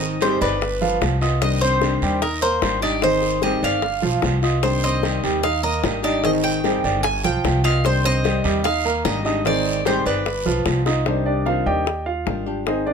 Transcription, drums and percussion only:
0.02 high bongo soft
0.21 high bongo medium
0.21 short guiro medium
0.41 high bongo soft
0.41 short guiro medium
0.62 high bongo medium
0.62 long guiro medium
0.82 high bongo soft
1.01 high bongo medium
1.01 low bongo medium
1.01 short guiro medium
1.21 short guiro medium
1.42 high bongo medium
1.42 long guiro medium
1.82 high bongo medium
1.82 short guiro medium
2.02 short guiro medium
2.22 high bongo medium
2.22 long guiro medium
2.62 high bongo medium
2.62 low bongo medium
2.62 short guiro medium
2.83 short guiro medium
3.02 high bongo medium
3.02 long guiro medium
3.22 high bongo soft
3.42 high bongo medium
3.42 short guiro medium
3.62 high bongo soft
3.62 short guiro medium
3.82 high bongo medium
3.82 long guiro medium
4.02 high bongo soft
4.22 high bongo medium
4.22 low bongo medium
4.22 short guiro medium
4.43 short guiro medium
4.63 high bongo medium
4.63 long guiro medium
5.03 high bongo medium
5.03 short guiro medium
5.24 short guiro medium
5.44 high bongo medium
5.44 long guiro medium
5.84 high bongo medium
5.84 low bongo medium
5.84 short guiro medium
6.04 short guiro medium
6.24 high bongo medium
6.24 long guiro medium
6.44 high bongo soft
6.64 high bongo medium
6.64 short guiro medium
6.84 high bongo soft
6.84 short guiro medium
7.04 high bongo medium
7.04 long guiro medium
7.25 high bongo soft
7.44 high bongo medium
7.44 low bongo medium
7.44 short guiro medium
7.64 short guiro medium
7.84 high bongo medium
7.84 long guiro medium
8.24 high bongo medium
8.24 short guiro medium
8.44 short guiro medium
8.64 high bongo medium
8.64 long guiro medium
9.05 high bongo medium
9.05 low bongo medium
9.05 short guiro medium
9.25 short guiro medium
9.45 high bongo medium
9.45 long guiro medium
9.66 high bongo soft
9.85 high bongo medium
9.85 short guiro medium
10.06 high bongo soft
10.06 short guiro medium
10.26 high bongo medium
10.26 long guiro medium
10.46 high bongo soft
10.66 high bongo medium
10.66 low bongo medium
10.66 short guiro medium
10.86 high bongo medium
10.86 short guiro medium
11.06 high bongo medium
11.47 high bongo medium
11.87 high bongo medium
12.27 high bongo medium
12.27 low bongo medium
12.67 high bongo medium
12.87 high bongo soft

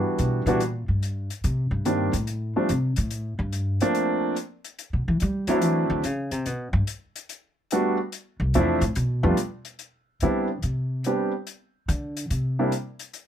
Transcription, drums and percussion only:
0.19 closed hi-hat soft
0.47 closed hi-hat soft
0.60 closed hi-hat soft
1.03 closed hi-hat soft
1.30 closed hi-hat soft
1.44 closed hi-hat soft
1.85 closed hi-hat soft
2.13 closed hi-hat soft
2.27 closed hi-hat soft
2.69 closed hi-hat soft
2.96 closed hi-hat soft
3.11 closed hi-hat soft
3.53 closed hi-hat soft
3.81 closed hi-hat soft
3.95 closed hi-hat soft
4.36 closed hi-hat soft
4.65 closed hi-hat soft
4.79 closed hi-hat soft
5.20 closed hi-hat soft
5.47 closed hi-hat soft
5.62 closed hi-hat soft
6.04 closed hi-hat soft
6.31 closed hi-hat soft
6.46 closed hi-hat soft
6.87 closed hi-hat soft
7.16 closed hi-hat soft
7.29 closed hi-hat soft
7.71 closed hi-hat soft
8.12 closed hi-hat soft
8.54 closed hi-hat soft
8.81 closed hi-hat soft
8.95 closed hi-hat soft
9.37 closed hi-hat soft
9.65 closed hi-hat soft
9.79 closed hi-hat soft
10.20 closed hi-hat soft
10.62 closed hi-hat soft
11.04 closed hi-hat soft
11.47 closed hi-hat soft
11.89 closed hi-hat soft
12.17 closed hi-hat soft
12.30 closed hi-hat soft
12.72 closed hi-hat soft
12.99 closed hi-hat soft
13.13 closed hi-hat soft

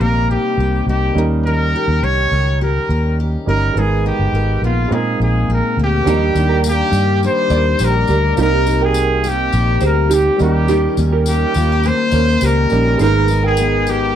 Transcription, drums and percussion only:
6.07 tambourine soft
6.35 tambourine soft
6.64 tambourine medium
6.93 tambourine soft
7.23 tambourine soft
7.50 tambourine soft
7.79 tambourine medium
8.07 tambourine soft
8.37 tambourine soft
8.66 tambourine soft
8.94 tambourine medium
9.24 tambourine soft
9.53 tambourine soft
9.81 tambourine soft
10.11 tambourine medium
10.39 tambourine soft
10.68 tambourine soft
10.97 tambourine soft
11.26 tambourine medium
11.54 tambourine medium
11.84 tambourine soft
12.11 tambourine soft
12.41 tambourine medium
12.70 tambourine soft
12.99 tambourine soft
13.28 tambourine soft
13.57 tambourine medium
13.87 tambourine medium

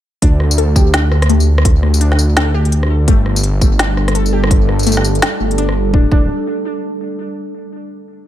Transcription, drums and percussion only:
0.22 kick loud
0.22 closed hi-hat medium
0.40 cross-stick soft
0.51 tambourine medium
0.58 closed hi-hat medium
0.76 kick loud
0.76 tambourine medium
0.94 snare loud
0.94 closed hi-hat medium
1.12 cross-stick medium
1.22 cross-stick medium
1.22 closed hi-hat soft
1.30 closed hi-hat medium
1.40 tambourine soft
1.58 cross-stick medium
1.65 kick loud
1.65 closed hi-hat medium
1.83 cross-stick soft
1.94 tambourine medium
2.01 closed hi-hat medium
2.12 snare soft
2.19 tambourine medium
2.37 snare loud
2.37 closed hi-hat medium
2.65 closed hi-hat soft
2.72 closed hi-hat medium
2.83 cross-stick medium
3.08 kick loud
3.08 closed hi-hat medium
3.26 cross-stick soft
3.36 tambourine medium
3.44 closed hi-hat medium
3.61 kick loud
3.61 tambourine medium
3.79 snare loud
3.79 closed hi-hat medium
3.97 cross-stick medium
4.08 cross-stick medium
4.08 closed hi-hat soft
4.15 closed hi-hat medium
4.26 tambourine soft
4.44 cross-stick medium
4.51 kick loud
4.51 closed hi-hat medium
4.69 cross-stick soft
4.79 closed hi-hat soft
4.79 tambourine soft
4.83 closed hi-hat medium
4.83 tambourine soft
4.87 tambourine soft
4.92 tambourine medium
4.97 snare soft
5.04 tambourine medium
5.15 closed hi-hat soft
5.22 snare loud
5.22 closed hi-hat medium
5.51 closed hi-hat soft
5.58 closed hi-hat medium
5.69 cross-stick medium
5.94 kick loud
6.12 kick loud

